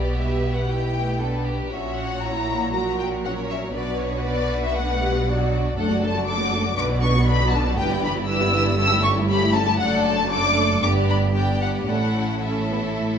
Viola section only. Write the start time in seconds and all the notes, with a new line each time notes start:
Already playing: B3 G4
0.17 G3 G4
0.67 G3 E4
0.92 A3
1.18 B3 D4
1.70 C#4
2.22 C#4 E4
2.48 A#3
2.75 F#3 F#4
3.26 C#4
3.75 F#3 D4
4.25 B3
4.76 A3
5.02 G3
5.27 F#3 D4
5.78 A3 D4
5.90 F#3 A3
6.03 A3 D4
6.15 F#3 A3
6.27 A3 D4
6.39 F#3 A3
6.52 A3 D4
6.64 F#3 A3
6.76 D3 D4
6.89 F#3 B3
7.02 D3 D4
7.15 F#3 B3
7.27 D3 D4
7.41 F#3 B3
7.53 D3 D4
7.66 F#3 B3
7.78 E3 D4
7.91 G3 B3
8.04 E3 D4
8.17 G3 B3
8.29 E3 D4
8.42 G3 B3
8.54 E3 D4
8.66 G3 B3
8.79 G3 C#4
8.92 A3 E4
9.04 G3 C#4
9.17 A3 E4
9.29 G3 C#4
9.42 A3 E4
9.54 G3 C#4
9.67 A3 E4
9.79 A3 D4
10.31 A3 D4
10.82 B3 D4
11.34 B3 D4
11.88 A3 C#4
12.43 C#4
12.70 B3
12.98 A3